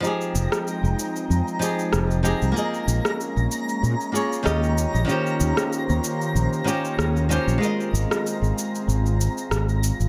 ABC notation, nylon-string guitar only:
X:1
M:4/4
L:1/8
Q:"Swing 16ths" 1/4=95
K:Fm
V:1 name="Nylon-string guitar"
[F,EGA]4- [F,EGA] [F,EGA]2 [F,EGA] | [B,FAe]4- [B,FAe] [B,FAd] [E,DFGe]2 | [E,DFGc]4- [E,DFGc] [E,DFGc]2 [E,DFGc] | [A,FBe]4- [A,FBe] z3 |]